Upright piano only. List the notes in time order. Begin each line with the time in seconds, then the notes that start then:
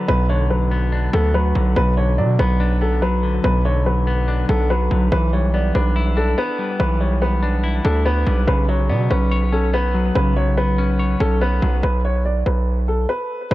0.08 B4
0.29 C#5
0.50 B4
1.13 A4
1.34 B4
1.76 B4
1.97 C#5
2.18 D5
2.39 B4
2.82 A4
3.02 B4
3.44 B4
3.65 C#5
3.86 B4
4.49 A4
4.70 B4
5.12 B4
5.33 C#5
5.54 D5
5.75 B4
6.17 A4
6.38 B4
6.80 B4
7.01 C#5
7.22 B4
7.85 A4
8.06 B4
8.48 B4
8.69 C#5
8.89 D5
9.10 B4
9.53 A4
9.74 B4
10.15 B4
10.36 C#5
10.57 B4
11.20 A4
11.41 B4
11.83 B4
12.05 C#5
12.25 D5
12.46 B4
12.88 A4
13.09 B4
13.51 B4